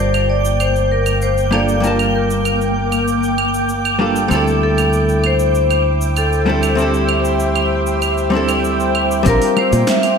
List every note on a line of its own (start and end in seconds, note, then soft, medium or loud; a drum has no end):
0.00 4.28 G1 medium
0.00 1.48 G3 medium
0.00 1.48 A#3 medium
0.00 4.27 A#3 medium
0.00 1.49 D4 medium
0.00 1.50 F4 medium
0.00 0.30 C5 medium
0.00 9.22 G5 medium
0.00 9.27 G5 medium
0.00 1.51 A5 medium
0.00 9.22 D6 medium
0.00 9.27 G6 medium
0.14 cabasa soft
0.14 claves medium
0.30 0.61 D5 medium
0.45 cabasa medium
0.60 0.89 C5 medium
0.60 cabasa soft
0.60 claves medium
0.76 cabasa soft
0.91 1.23 A#4 medium
1.06 cabasa medium
1.06 claves medium
1.22 1.36 C5 medium
1.22 cabasa medium
1.38 cabasa soft
1.51 1.79 G3 medium
1.51 1.80 A#3 medium
1.51 1.80 D4 medium
1.51 1.80 F4 medium
1.51 1.81 A4 medium
1.51 1.85 D5 medium
1.51 claves medium
1.69 cabasa medium
1.80 3.95 G3 medium
1.80 3.96 A#3 medium
1.80 3.96 D4 medium
1.80 cabasa soft
1.84 3.97 F4 medium
1.84 2.14 A#4 medium
1.84 3.98 A5 loud
1.99 cabasa soft
1.99 claves medium
2.16 2.73 A#4 medium
2.31 cabasa medium
2.45 cabasa soft
2.45 claves medium
2.61 cabasa soft
2.92 cabasa medium
2.92 claves medium
3.08 cabasa soft
3.23 cabasa soft
3.38 claves medium
3.54 cabasa medium
3.69 cabasa soft
3.85 cabasa soft
3.85 claves medium
3.99 4.27 G3 medium
3.99 4.27 A#3 medium
3.99 4.27 D4 medium
3.99 4.28 F4 medium
3.99 4.28 A4 medium
4.16 cabasa medium
4.28 9.23 D2 medium
4.28 6.43 G3 medium
4.28 6.43 C4 medium
4.28 6.44 D4 medium
4.28 9.22 C5 medium
4.28 9.22 E5 medium
4.28 cabasa soft
4.28 claves medium
4.33 6.45 E4 medium
4.33 4.46 A4 medium
4.33 6.46 A4 medium
4.47 cabasa soft
4.63 5.21 A4 medium
4.78 cabasa medium
4.78 claves medium
4.93 cabasa soft
5.09 cabasa soft
5.24 5.83 C5 loud
5.24 claves medium
5.39 cabasa medium
5.55 cabasa soft
5.71 cabasa soft
5.71 claves medium
6.01 cabasa medium
6.17 6.81 A4 loud
6.17 cabasa soft
6.17 claves medium
6.33 cabasa soft
6.46 6.74 G3 medium
6.46 6.74 C4 medium
6.46 6.75 D4 medium
6.46 6.75 E4 medium
6.46 6.76 A4 medium
6.63 cabasa medium
6.63 claves medium
6.75 8.29 G3 medium
6.75 8.29 C4 medium
6.75 8.30 D4 medium
6.75 8.91 G4 medium
6.75 cabasa soft
6.80 8.31 E4 medium
6.80 8.32 A4 loud
6.94 cabasa soft
7.09 claves medium
7.25 cabasa medium
7.40 cabasa soft
7.56 cabasa soft
7.56 claves medium
7.87 cabasa medium
8.02 cabasa soft
8.02 claves medium
8.18 cabasa soft
8.30 9.21 G3 medium
8.30 9.22 C4 medium
8.30 9.22 D4 medium
8.35 9.23 E4 medium
8.35 9.24 A4 medium
8.49 cabasa medium
8.49 claves medium
8.64 cabasa medium
8.80 cabasa soft
8.95 claves medium
9.11 cabasa medium
9.23 9.36 A#1 loud
9.23 10.18 G3 loud
9.23 10.18 C4 medium
9.23 10.18 D4 medium
9.23 10.18 C5 medium
9.23 10.18 G5 medium
9.23 10.18 A#5 medium
9.23 10.18 D6 medium
9.23 kick loud
9.23 open hi-hat medium
9.23 cabasa medium
9.27 10.18 F4 medium
9.27 9.55 A#4 medium
9.27 10.18 A#4 loud
9.42 open hi-hat soft
9.42 cabasa soft
9.57 9.90 C5 medium
9.57 high bongo soft
9.57 claves medium
9.73 9.83 A#2 loud
9.73 open hi-hat soft
9.73 cabasa medium
9.87 10.18 E5 loud
9.87 snare medium
9.87 open hi-hat medium
9.87 cabasa medium
10.03 open hi-hat soft
10.03 cabasa soft
10.03 claves medium